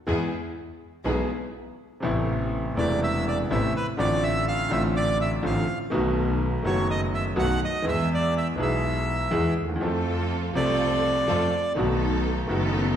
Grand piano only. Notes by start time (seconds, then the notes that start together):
0.07 E2 E3 G#3 B3 G#4
1.05 B1 B2 E3 G#3 B3 G#4
2.00 A1 A2 C3 A3 B3
2.05 E4
2.75 E1 E2 C3 A3 B3 E4
3.51 A1 A2 C3 A3 B3 E4
3.97 A1 A2 D3 A3 C4 F4
4.69 A1 A2 D3 A3 C4
4.73 F4
5.42 A1 A2 D3 A3 C4 F4
5.90 B1 B2 D#3 A3 B3 F#4
6.63 F#1 F#2 D#3 A3 B3
6.67 F#4
7.36 B1 B2 D#3 A3 B3 F#4
7.82 E2 E3 G#3 B3
7.86 G#4
8.56 B1 B2 E3 G#3 B3
8.60 G#4
9.31 E2 E3 G#3 B3 G#4
9.63 D2
9.69 D#2
9.75 E2 F3
9.80 F2 F3 A3 C4 A4
10.53 C2 C3 F3 A3 C4 A4
11.28 F2 F3 A3 C4 A4
11.75 B1 B2 D#3 A3 B3
11.79 F#4
12.47 F#1 F#2 D#3 A3 B3 F#4